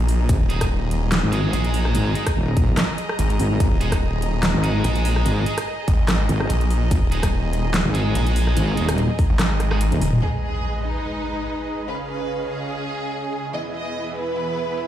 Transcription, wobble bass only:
0.29 0.39 G#1 loud
1.23 1.52 G#1 loud
1.95 2.14 G#1 loud
2.36 2.76 D#1 loud
3.40 3.59 G#1 loud
3.60 3.70 G#1 loud
4.54 4.83 G#1 loud
5.26 5.45 G#1 loud
6.29 6.48 G#1 loud
6.91 7.01 G#1 loud
7.85 8.14 G#1 loud
8.57 8.76 G#1 loud
8.77 9.08 D#1 medium
9.92 10.00 D#1 loud

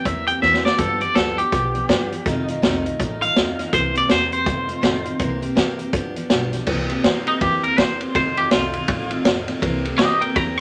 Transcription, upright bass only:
0.06 0.31 E2 medium
0.42 0.68 E2 medium
0.79 1.05 G1 medium
1.16 1.41 D2 medium
1.52 1.78 B1 loud
1.89 2.15 G1 medium
2.26 2.51 F1 loud
2.62 2.88 C2 medium
3.00 3.25 A1 loud
3.36 3.62 D2 medium
3.73 3.98 C2 loud
4.11 4.48 E2 medium
4.46 4.72 F1 loud
4.84 5.09 A1 medium
5.20 5.46 C2 loud
5.56 5.82 G2 medium
5.93 6.19 G1 medium
6.30 6.56 B1 medium
6.67 6.93 C2 loud
7.04 7.29 G2 medium
7.41 7.67 E2 loud
7.78 8.04 E2 medium
8.15 8.41 F1 loud
8.52 8.77 C2 medium
8.88 9.14 A1 medium
9.26 9.51 A1 medium
9.62 9.88 C2 medium
9.98 10.24 G2 medium
10.36 10.60 E2 medium

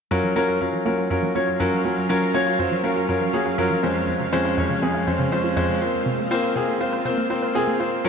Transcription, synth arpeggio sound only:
0.11 0.19 F#2 medium
0.24 0.31 F3 medium
0.36 0.44 A#3 medium
0.48 0.56 F#4 medium
0.61 0.69 F#2 medium
0.73 0.81 F3 medium
0.86 0.93 A#3 medium
0.98 1.06 F#4 medium
1.10 1.18 F#2 medium
1.23 1.31 F3 medium
1.35 1.43 A#3 medium
1.48 1.55 F#4 medium
1.60 1.68 F#2 medium
1.72 1.80 F3 medium
1.85 1.92 A#3 medium
2.10 2.17 F#2 medium
2.22 2.30 F3 medium
2.34 2.42 A#3 medium
2.47 2.54 F#4 medium
2.59 2.67 F#2 medium
2.71 2.79 F3 medium
2.84 2.92 A#3 medium
2.96 3.04 F#4 medium
3.09 3.16 F#2 medium
3.21 3.29 F3 medium
3.33 3.41 A#3 medium
3.46 3.54 F#4 medium
3.58 3.66 F#2 medium
3.71 3.78 F3 medium
3.83 3.91 C4 medium
4.08 4.16 F2 medium
4.20 4.28 C#3 medium
4.33 4.40 C4 medium
4.45 4.53 F4 medium
4.57 4.65 F2 medium
4.70 4.77 C#3 medium
4.82 4.90 C4 medium
4.95 5.02 F4 medium
5.07 5.15 F2 medium
5.19 5.27 C#3 medium
5.32 5.40 C4 medium
5.44 5.52 F4 medium
5.57 5.64 F2 medium
5.69 5.77 C#3 medium
5.81 5.89 F4 medium
6.06 6.14 C3 medium
6.19 6.26 A#3 medium
6.31 6.39 F4 medium
6.43 6.51 C5 loud
6.56 6.64 C3 medium
6.68 6.76 A#3 medium
6.81 6.88 F4 medium
6.93 7.01 C5 medium
7.05 7.13 C3 medium
7.18 7.25 A#3 medium
7.30 7.38 F4 medium
7.42 7.50 C5 medium
7.55 7.63 C3 medium
7.67 7.75 A#3 medium
7.80 7.87 F4 medium

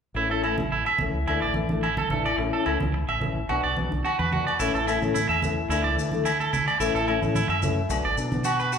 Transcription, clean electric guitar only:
0.16 0.27 E4 medium
0.31 0.41 A4 medium
0.44 0.55 E4 medium
0.72 0.83 E4 medium
0.87 0.96 E5 medium
1.27 1.39 E4 medium
1.42 1.52 D5 medium
1.83 1.94 E4 medium
1.98 2.08 A4 medium
2.11 2.22 A4 medium
2.25 2.35 D5 medium
2.38 muted clean electric guitar stroke medium
2.53 2.63 A4 medium
2.66 2.77 E4 medium
2.94 muted clean electric guitar stroke medium
3.09 3.19 E5 medium
3.49 3.61 F#4 medium
3.64 3.74 D5 medium
4.05 4.16 F#4 medium
4.19 4.29 B4 medium
4.32 4.44 F#4 medium
4.47 4.57 D5 medium
4.60 4.71 E4 medium
4.75 4.85 A4 medium
4.87 4.99 E4 medium
5.14 5.26 E4 medium
5.29 5.39 E5 medium
5.70 5.81 E4 medium
5.84 5.94 D5 medium
6.25 6.37 E4 medium
6.40 6.50 A4 medium
6.53 6.64 E4 medium
6.68 6.78 D5 medium
6.80 6.91 E4 medium
6.95 7.05 A4 medium
7.08 7.19 E4 medium
7.36 7.47 E4 medium
7.50 7.60 E5 medium
7.90 muted clean electric guitar stroke medium
8.05 8.15 D5 medium
8.45 8.56 F#4 medium
8.60 8.70 B4 medium
8.73 8.78 F#4 medium

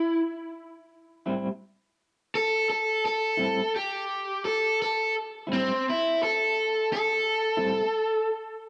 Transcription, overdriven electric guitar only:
0.00 0.21 E4 medium
2.35 2.68 A4 loud
2.70 3.03 A4 medium
3.05 3.72 A4 medium
3.76 4.43 G4 medium
4.45 4.78 A4 medium
4.82 5.14 A4 medium
5.53 5.85 C4 medium
5.90 6.21 E4 medium
6.23 6.89 A4 medium
6.93 8.27 A4 medium

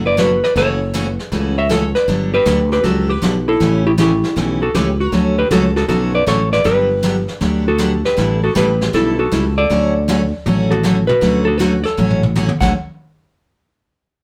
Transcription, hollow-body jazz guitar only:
0.06 0.17 B4 medium
0.06 0.19 D5 medium
0.19 0.42 F#4 medium
0.19 0.44 B4 medium
0.44 0.55 B4 medium
0.44 0.56 D5 medium
0.57 1.29 A4 medium
0.57 1.10 C#5 loud
1.10 1.29 B4 loud
1.58 1.70 C#5 medium
1.58 1.72 E5 medium
1.71 1.94 A4 medium
1.71 1.96 C#5 medium
1.95 2.31 B4 medium
1.95 2.34 D5 loud
2.34 2.69 G4 medium
2.34 2.71 B4 loud
2.72 2.83 G4 medium
2.72 2.84 B4 medium
2.84 3.08 F#4 medium
2.84 3.10 A4 medium
3.09 3.45 G4 medium
3.09 3.49 B4 medium
3.48 3.83 E4 medium
3.48 3.86 A4 medium
3.87 3.92 E4 medium
3.87 3.92 G4 medium
4.00 4.58 E4 medium
4.00 4.62 G4 medium
4.62 4.74 F#4 medium
4.62 4.75 A4 medium
4.75 4.98 G4 medium
4.75 5.01 B4 medium
5.00 5.36 F#4 medium
5.00 5.38 A4 medium
5.38 5.50 G4 medium
5.38 5.51 B4 medium
5.51 5.75 F#4 medium
5.51 5.75 A4 medium
5.76 5.87 F#4 medium
5.76 5.88 A4 medium
5.88 6.12 F#4 medium
5.88 6.14 A4 medium
6.15 6.26 B4 medium
6.15 6.28 D5 medium
6.28 6.51 A4 medium
6.28 6.52 C#5 medium
6.53 6.64 B4 medium
6.53 6.66 D5 medium
6.65 7.37 G4 medium
6.65 7.37 B4 medium
7.68 8.03 F#4 medium
7.68 8.05 A4 medium
8.05 8.40 G4 medium
8.05 8.43 B4 medium
8.44 8.55 F#4 medium
8.44 8.56 A4 medium
8.57 8.92 G4 medium
8.57 8.94 B4 medium
8.94 9.17 E4 medium
8.94 9.18 A4 medium
9.19 9.54 F#4 medium
9.19 9.57 A4 medium
9.58 10.69 A4 medium
9.58 10.80 D5 medium
10.71 11.06 F#4 medium
10.71 11.07 A4 medium
11.07 11.44 F#4 medium
11.07 11.45 B4 loud
11.45 11.59 F#4 medium
11.45 11.58 A4 medium
11.58 11.84 F#4 medium
11.58 11.84 B4 loud
11.84 12.32 A4 medium
11.84 12.35 C#5 loud
12.61 12.73 F#5 medium

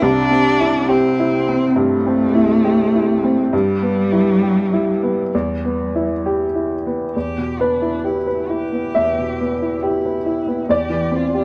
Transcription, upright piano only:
0.02 1.73 C2 medium
0.31 0.78 C4 medium
0.60 1.07 E4 medium
0.89 1.36 G4 medium
1.20 1.66 E4 medium
1.49 1.95 C4 medium
1.76 2.23 G2 medium
2.07 2.53 C4 medium
2.35 2.82 E4 medium
2.64 3.11 G4 medium
2.95 3.41 E4 medium
3.24 3.53 C4 medium
3.53 5.29 G2 medium
3.82 4.30 B3 medium
4.12 4.60 E4 medium
4.42 4.90 G4 medium
4.73 5.21 E4 medium
5.03 5.33 B3 medium
5.35 7.12 E2 medium
5.65 6.13 B3 soft
5.95 6.43 E4 medium
6.26 6.74 G4 medium
6.55 7.03 E4 soft
6.87 7.16 B3 medium
7.16 8.92 E2 soft
7.38 7.73 B2 soft
7.60 7.95 B3 soft
7.60 8.25 B4 medium
7.82 8.18 E4 soft
8.04 8.40 G4 soft
8.27 8.63 B4 soft
8.50 8.86 E4 soft
8.72 9.08 B3 soft
8.95 10.66 E2 soft
8.95 10.65 E5 medium
9.18 9.53 B2 soft
9.41 9.75 B3 soft
9.62 9.96 E4 soft
9.83 10.18 G4 medium
10.06 10.40 B4 soft
10.26 10.61 E4 soft
10.47 10.69 B3 soft
10.69 11.44 E2 medium
10.69 11.44 D5 medium
10.89 11.25 E3 soft
11.12 11.44 C4 soft
11.34 11.44 G4 soft

